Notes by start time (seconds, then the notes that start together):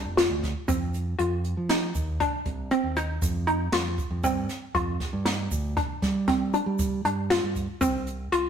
Already playing: D4
0.05 F1
0.17 F4, snare, closed hi-hat
0.30 D2
0.43 kick, snare, closed hi-hat
0.68 F2 C4, kick, closed hi-hat, shaker
0.94 closed hi-hat, shaker
1.19 F2 F4, closed hi-hat
1.44 closed hi-hat
1.57 F3
1.69 D#4, snare, closed hi-hat
1.95 D#2, kick, closed hi-hat, shaker
2.20 D4, kick, closed hi-hat
2.45 C2, kick, closed hi-hat
2.71 C4, closed hi-hat
2.83 D#2
2.96 D#4, closed hi-hat, shaker
3.22 F2, kick, closed hi-hat, shaker
3.47 D#4, closed hi-hat
3.72 F2 F4, snare, closed hi-hat
3.98 kick, closed hi-hat, shaker
4.11 F2
4.23 G2 C4, kick, closed hi-hat, shaker
4.49 snare, closed hi-hat, shaker
4.74 F2 F4, kick, closed hi-hat
5.00 kick, snare, closed hi-hat
5.13 G2
5.25 D#4, snare, closed hi-hat
5.51 D2, kick, closed hi-hat, shaker
5.77 D4, kick, closed hi-hat
6.02 G3, kick, snare, closed hi-hat
6.28 C4, kick, snare, closed hi-hat
6.54 D4, closed hi-hat, shaker
6.66 G3
6.79 kick, closed hi-hat, shaker
7.05 G2 D4, closed hi-hat
7.30 F4, snare, closed hi-hat
7.43 G2
7.56 kick, closed hi-hat, shaker
7.81 C2 C4, kick, closed hi-hat, shaker
8.07 closed hi-hat, shaker
8.32 C2 F4, closed hi-hat